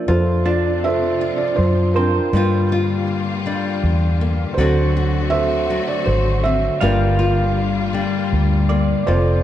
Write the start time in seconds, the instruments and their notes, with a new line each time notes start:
Already playing: clean electric guitar A#3 D4 E5
0.08 fingered electric bass F2, string section C3 F3 C4 F4, nylon-string guitar F4, felt piano F4 A4 C5
0.45 clean electric guitar D4, nylon-string guitar F4, felt piano D5
0.84 felt piano A4 C5 E5
1.21 nylon-string guitar F4
1.38 felt piano D5
1.56 fingered electric bass F#2, felt piano C5
1.94 nylon-string guitar C4, felt piano D4 F4 A#4, clean electric guitar C5
2.33 fingered electric bass G2, nylon-string guitar G2 G3 A#3 D4 F4, string section D3 G3 A#3 F4
2.72 nylon-string guitar F4
3.46 nylon-string guitar G3 D4
3.84 fingered electric bass E2
4.21 nylon-string guitar A#3
4.54 fingered electric bass D2, nylon-string guitar D3, felt piano F#4 A4 C5
4.58 nylon-string guitar F#3 C4 D4 F#4, string section A3 C4 F#4
4.97 nylon-string guitar F#4
5.30 felt piano A4 C5 E5
5.70 nylon-string guitar F#3 D4
5.88 felt piano D5
6.06 fingered electric bass G#1, felt piano C5
6.43 nylon-string guitar C4, felt piano E5
6.81 fingered electric bass G1, nylon-string guitar G2 G3 A#3 D4 F4, string section G3 A#3 F4, felt piano F4 A#4 D5, clean electric guitar F5
7.19 nylon-string guitar F4
7.93 nylon-string guitar G3 D4
8.33 fingered electric bass D2
8.69 nylon-string guitar A#3, clean electric guitar D5
9.07 fingered electric bass F1, nylon-string guitar F2 F4, string section C3 F3 C4 F4, felt piano F4 A4 C5